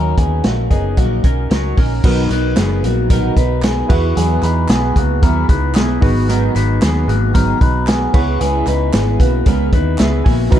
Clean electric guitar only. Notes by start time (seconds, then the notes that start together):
Already playing: C#4 A#4
0.18 B3 G#4
0.44 A#3 F#4
0.70 B3 G#4
0.98 A#3 F#4
1.25 C#4 A#4
1.51 F#4 C#5
1.78 C#4 A#4
2.05 D#4 A#4
2.31 D#4 B4
2.58 B3 G#4
2.84 A#3 F#4
3.11 D#4 A#4
3.38 D#4 B4
3.64 B3 G#4
3.90 B3 F#4
4.17 B3 G#4
4.43 D#4 B4
4.70 B3 G#4
4.97 A#3 F#4
5.23 E4 A#4
5.49 D#4 B4
5.75 B3 G#4
6.02 B3 F#4
6.29 D#4 A#4
6.55 D#4 B4
6.82 B3 G#4
7.08 A#3 F#4
7.34 D#4 A#4
7.61 D#4 B4
7.88 B3 G#4
8.15 B3 F#4
8.41 B3 G#4
8.68 D#4 B4
8.94 B3 G#4
9.20 A#3 F#4
9.47 C#4 A#4
9.73 D#4 B4
10.00 B3 G#4
10.25 A#3 F#4
10.52 D#4 A#4